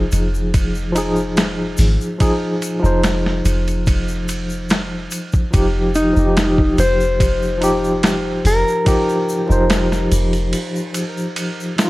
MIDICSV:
0, 0, Header, 1, 5, 480
1, 0, Start_track
1, 0, Key_signature, -4, "minor"
1, 0, Tempo, 833333
1, 1267, Time_signature, 4, 2, 24, 8
1, 6854, End_track
2, 0, Start_track
2, 0, Title_t, "Clean electric guitar"
2, 0, Program_c, 0, 27
2, 3430, Note_on_c, 0, 63, 89
2, 3915, Note_on_c, 0, 72, 103
2, 3923, Note_off_c, 0, 63, 0
2, 4875, Note_off_c, 0, 72, 0
2, 4877, Note_on_c, 0, 70, 89
2, 6529, Note_off_c, 0, 70, 0
2, 6854, End_track
3, 0, Start_track
3, 0, Title_t, "Tine electric piano"
3, 0, Program_c, 1, 4
3, 0, Control_c, 1, 64, 127
3, 0, Note_on_c, 1, 53, 74
3, 0, Note_on_c, 1, 63, 63
3, 0, Note_on_c, 1, 68, 77
3, 513, Note_off_c, 1, 53, 0
3, 521, Note_off_c, 1, 63, 0
3, 529, Note_off_c, 1, 68, 0
3, 531, Note_on_c, 1, 53, 82
3, 548, Note_on_c, 1, 63, 77
3, 564, Note_on_c, 1, 68, 92
3, 1232, Note_off_c, 1, 53, 0
3, 1240, Note_off_c, 1, 63, 0
3, 1248, Note_off_c, 1, 68, 0
3, 1256, Note_on_c, 1, 53, 82
3, 1267, Note_on_c, 1, 63, 73
3, 1275, Note_on_c, 1, 68, 95
3, 1597, Note_off_c, 1, 53, 0
3, 1602, Note_off_c, 1, 63, 0
3, 1606, Note_off_c, 1, 68, 0
3, 1612, Note_on_c, 1, 53, 84
3, 1628, Note_on_c, 1, 63, 76
3, 1647, Note_on_c, 1, 72, 93
3, 3150, Note_off_c, 1, 53, 0
3, 3158, Note_off_c, 1, 63, 0
3, 3167, Note_off_c, 1, 72, 0
3, 3171, Note_on_c, 1, 53, 77
3, 3180, Note_on_c, 1, 63, 71
3, 3187, Note_on_c, 1, 67, 87
3, 3196, Control_c, 1, 64, 0
3, 3296, Control_c, 1, 64, 127
3, 3514, Note_off_c, 1, 53, 0
3, 3518, Note_off_c, 1, 63, 0
3, 3522, Note_off_c, 1, 67, 0
3, 3530, Note_on_c, 1, 53, 69
3, 3546, Note_on_c, 1, 63, 67
3, 3565, Note_on_c, 1, 67, 76
3, 4349, Note_off_c, 1, 53, 0
3, 4356, Note_off_c, 1, 63, 0
3, 4364, Note_on_c, 1, 53, 82
3, 4366, Note_off_c, 1, 67, 0
3, 4381, Note_on_c, 1, 63, 78
3, 4398, Note_on_c, 1, 67, 98
3, 5068, Note_off_c, 1, 53, 0
3, 5077, Note_off_c, 1, 63, 0
3, 5085, Note_off_c, 1, 67, 0
3, 5097, Note_on_c, 1, 53, 83
3, 5105, Note_on_c, 1, 63, 72
3, 5113, Note_on_c, 1, 67, 95
3, 5437, Note_off_c, 1, 53, 0
3, 5441, Note_off_c, 1, 63, 0
3, 5445, Note_off_c, 1, 67, 0
3, 5450, Note_on_c, 1, 53, 84
3, 5467, Note_on_c, 1, 63, 82
3, 5484, Note_on_c, 1, 72, 94
3, 6753, Note_off_c, 1, 53, 0
3, 6762, Note_off_c, 1, 63, 0
3, 6770, Note_off_c, 1, 72, 0
3, 6774, Note_on_c, 1, 53, 70
3, 6785, Note_on_c, 1, 63, 63
3, 6791, Note_on_c, 1, 65, 76
3, 6854, Note_off_c, 1, 53, 0
3, 6854, Note_off_c, 1, 63, 0
3, 6854, Note_off_c, 1, 65, 0
3, 6854, End_track
4, 0, Start_track
4, 0, Title_t, "808-style bass"
4, 0, Program_c, 2, 38
4, 71, Note_on_c, 2, 29, 93
4, 1007, Note_off_c, 2, 29, 0
4, 1029, Note_on_c, 2, 32, 99
4, 1138, Note_off_c, 2, 32, 0
4, 1633, Note_on_c, 2, 29, 97
4, 1966, Note_off_c, 2, 29, 0
4, 1987, Note_on_c, 2, 29, 92
4, 2925, Note_off_c, 2, 29, 0
4, 3191, Note_on_c, 2, 29, 92
4, 3530, Note_off_c, 2, 29, 0
4, 3551, Note_on_c, 2, 29, 102
4, 3885, Note_off_c, 2, 29, 0
4, 3905, Note_on_c, 2, 29, 96
4, 4844, Note_off_c, 2, 29, 0
4, 4866, Note_on_c, 2, 29, 105
4, 4977, Note_off_c, 2, 29, 0
4, 5470, Note_on_c, 2, 29, 94
4, 5804, Note_off_c, 2, 29, 0
4, 5827, Note_on_c, 2, 29, 92
4, 6067, Note_off_c, 2, 29, 0
4, 6854, End_track
5, 0, Start_track
5, 0, Title_t, "Drums"
5, 67, Note_on_c, 9, 82, 85
5, 72, Note_on_c, 9, 51, 63
5, 125, Note_off_c, 9, 82, 0
5, 130, Note_off_c, 9, 51, 0
5, 198, Note_on_c, 9, 82, 41
5, 256, Note_off_c, 9, 82, 0
5, 310, Note_on_c, 9, 51, 80
5, 312, Note_on_c, 9, 36, 95
5, 312, Note_on_c, 9, 82, 47
5, 368, Note_off_c, 9, 51, 0
5, 369, Note_off_c, 9, 36, 0
5, 369, Note_off_c, 9, 82, 0
5, 432, Note_on_c, 9, 82, 34
5, 490, Note_off_c, 9, 82, 0
5, 551, Note_on_c, 9, 51, 66
5, 551, Note_on_c, 9, 82, 75
5, 609, Note_off_c, 9, 51, 0
5, 609, Note_off_c, 9, 82, 0
5, 668, Note_on_c, 9, 82, 34
5, 726, Note_off_c, 9, 82, 0
5, 789, Note_on_c, 9, 82, 49
5, 790, Note_on_c, 9, 51, 86
5, 794, Note_on_c, 9, 38, 107
5, 847, Note_off_c, 9, 82, 0
5, 848, Note_off_c, 9, 51, 0
5, 852, Note_off_c, 9, 38, 0
5, 1022, Note_on_c, 9, 82, 92
5, 1030, Note_on_c, 9, 46, 69
5, 1079, Note_off_c, 9, 82, 0
5, 1088, Note_off_c, 9, 46, 0
5, 1157, Note_on_c, 9, 82, 37
5, 1214, Note_off_c, 9, 82, 0
5, 1268, Note_on_c, 9, 51, 77
5, 1269, Note_on_c, 9, 82, 48
5, 1270, Note_on_c, 9, 36, 98
5, 1326, Note_off_c, 9, 51, 0
5, 1327, Note_off_c, 9, 82, 0
5, 1328, Note_off_c, 9, 36, 0
5, 1510, Note_on_c, 9, 51, 62
5, 1511, Note_on_c, 9, 82, 74
5, 1567, Note_off_c, 9, 51, 0
5, 1568, Note_off_c, 9, 82, 0
5, 1639, Note_on_c, 9, 82, 34
5, 1696, Note_off_c, 9, 82, 0
5, 1748, Note_on_c, 9, 51, 73
5, 1749, Note_on_c, 9, 82, 49
5, 1752, Note_on_c, 9, 38, 98
5, 1806, Note_off_c, 9, 51, 0
5, 1807, Note_off_c, 9, 82, 0
5, 1810, Note_off_c, 9, 38, 0
5, 1880, Note_on_c, 9, 38, 44
5, 1937, Note_off_c, 9, 38, 0
5, 1989, Note_on_c, 9, 82, 87
5, 1990, Note_on_c, 9, 51, 65
5, 2046, Note_off_c, 9, 82, 0
5, 2048, Note_off_c, 9, 51, 0
5, 2118, Note_on_c, 9, 51, 42
5, 2119, Note_on_c, 9, 82, 37
5, 2175, Note_off_c, 9, 51, 0
5, 2177, Note_off_c, 9, 82, 0
5, 2225, Note_on_c, 9, 82, 47
5, 2230, Note_on_c, 9, 36, 99
5, 2232, Note_on_c, 9, 51, 84
5, 2283, Note_off_c, 9, 82, 0
5, 2287, Note_off_c, 9, 36, 0
5, 2289, Note_off_c, 9, 51, 0
5, 2352, Note_on_c, 9, 82, 35
5, 2409, Note_off_c, 9, 82, 0
5, 2467, Note_on_c, 9, 82, 84
5, 2471, Note_on_c, 9, 51, 64
5, 2525, Note_off_c, 9, 82, 0
5, 2528, Note_off_c, 9, 51, 0
5, 2590, Note_on_c, 9, 82, 40
5, 2648, Note_off_c, 9, 82, 0
5, 2702, Note_on_c, 9, 82, 48
5, 2710, Note_on_c, 9, 51, 80
5, 2714, Note_on_c, 9, 38, 112
5, 2759, Note_off_c, 9, 82, 0
5, 2767, Note_off_c, 9, 51, 0
5, 2771, Note_off_c, 9, 38, 0
5, 2943, Note_on_c, 9, 82, 86
5, 2949, Note_on_c, 9, 51, 60
5, 3001, Note_off_c, 9, 82, 0
5, 3007, Note_off_c, 9, 51, 0
5, 3066, Note_on_c, 9, 82, 35
5, 3074, Note_on_c, 9, 36, 86
5, 3124, Note_off_c, 9, 82, 0
5, 3131, Note_off_c, 9, 36, 0
5, 3187, Note_on_c, 9, 82, 50
5, 3189, Note_on_c, 9, 36, 98
5, 3190, Note_on_c, 9, 51, 84
5, 3244, Note_off_c, 9, 82, 0
5, 3246, Note_off_c, 9, 36, 0
5, 3247, Note_off_c, 9, 51, 0
5, 3425, Note_on_c, 9, 82, 78
5, 3430, Note_on_c, 9, 51, 60
5, 3483, Note_off_c, 9, 82, 0
5, 3488, Note_off_c, 9, 51, 0
5, 3551, Note_on_c, 9, 82, 34
5, 3609, Note_off_c, 9, 82, 0
5, 3668, Note_on_c, 9, 51, 76
5, 3670, Note_on_c, 9, 82, 46
5, 3672, Note_on_c, 9, 38, 104
5, 3725, Note_off_c, 9, 51, 0
5, 3727, Note_off_c, 9, 82, 0
5, 3729, Note_off_c, 9, 38, 0
5, 3792, Note_on_c, 9, 36, 93
5, 3849, Note_off_c, 9, 36, 0
5, 3907, Note_on_c, 9, 51, 66
5, 3907, Note_on_c, 9, 82, 81
5, 3965, Note_off_c, 9, 51, 0
5, 3965, Note_off_c, 9, 82, 0
5, 4035, Note_on_c, 9, 82, 39
5, 4093, Note_off_c, 9, 82, 0
5, 4148, Note_on_c, 9, 36, 102
5, 4150, Note_on_c, 9, 51, 86
5, 4151, Note_on_c, 9, 82, 43
5, 4206, Note_off_c, 9, 36, 0
5, 4207, Note_off_c, 9, 51, 0
5, 4209, Note_off_c, 9, 82, 0
5, 4276, Note_on_c, 9, 82, 33
5, 4334, Note_off_c, 9, 82, 0
5, 4387, Note_on_c, 9, 51, 64
5, 4396, Note_on_c, 9, 82, 90
5, 4444, Note_off_c, 9, 51, 0
5, 4454, Note_off_c, 9, 82, 0
5, 4518, Note_on_c, 9, 82, 33
5, 4575, Note_off_c, 9, 82, 0
5, 4626, Note_on_c, 9, 51, 85
5, 4630, Note_on_c, 9, 38, 118
5, 4640, Note_on_c, 9, 82, 48
5, 4684, Note_off_c, 9, 51, 0
5, 4688, Note_off_c, 9, 38, 0
5, 4698, Note_off_c, 9, 82, 0
5, 4867, Note_on_c, 9, 46, 75
5, 4872, Note_on_c, 9, 82, 83
5, 4925, Note_off_c, 9, 46, 0
5, 4930, Note_off_c, 9, 82, 0
5, 4999, Note_on_c, 9, 82, 36
5, 5056, Note_off_c, 9, 82, 0
5, 5104, Note_on_c, 9, 51, 86
5, 5107, Note_on_c, 9, 36, 100
5, 5110, Note_on_c, 9, 82, 55
5, 5162, Note_off_c, 9, 51, 0
5, 5164, Note_off_c, 9, 36, 0
5, 5167, Note_off_c, 9, 82, 0
5, 5236, Note_on_c, 9, 82, 32
5, 5294, Note_off_c, 9, 82, 0
5, 5350, Note_on_c, 9, 82, 86
5, 5408, Note_off_c, 9, 82, 0
5, 5477, Note_on_c, 9, 82, 37
5, 5535, Note_off_c, 9, 82, 0
5, 5586, Note_on_c, 9, 51, 78
5, 5590, Note_on_c, 9, 38, 99
5, 5593, Note_on_c, 9, 82, 45
5, 5643, Note_off_c, 9, 51, 0
5, 5647, Note_off_c, 9, 38, 0
5, 5651, Note_off_c, 9, 82, 0
5, 5715, Note_on_c, 9, 38, 47
5, 5718, Note_on_c, 9, 82, 33
5, 5772, Note_off_c, 9, 38, 0
5, 5775, Note_off_c, 9, 82, 0
5, 5827, Note_on_c, 9, 51, 68
5, 5829, Note_on_c, 9, 82, 90
5, 5884, Note_off_c, 9, 51, 0
5, 5886, Note_off_c, 9, 82, 0
5, 5951, Note_on_c, 9, 51, 44
5, 5958, Note_on_c, 9, 82, 40
5, 6008, Note_off_c, 9, 51, 0
5, 6015, Note_off_c, 9, 82, 0
5, 6064, Note_on_c, 9, 51, 83
5, 6069, Note_on_c, 9, 82, 45
5, 6122, Note_off_c, 9, 51, 0
5, 6127, Note_off_c, 9, 82, 0
5, 6196, Note_on_c, 9, 82, 38
5, 6254, Note_off_c, 9, 82, 0
5, 6303, Note_on_c, 9, 51, 67
5, 6305, Note_on_c, 9, 82, 84
5, 6361, Note_off_c, 9, 51, 0
5, 6362, Note_off_c, 9, 82, 0
5, 6436, Note_on_c, 9, 82, 33
5, 6494, Note_off_c, 9, 82, 0
5, 6545, Note_on_c, 9, 51, 79
5, 6549, Note_on_c, 9, 82, 42
5, 6602, Note_off_c, 9, 51, 0
5, 6607, Note_off_c, 9, 82, 0
5, 6683, Note_on_c, 9, 82, 35
5, 6741, Note_off_c, 9, 82, 0
5, 6787, Note_on_c, 9, 51, 72
5, 6791, Note_on_c, 9, 38, 88
5, 6792, Note_on_c, 9, 82, 81
5, 6844, Note_off_c, 9, 51, 0
5, 6848, Note_off_c, 9, 38, 0
5, 6849, Note_off_c, 9, 82, 0
5, 6854, End_track
0, 0, End_of_file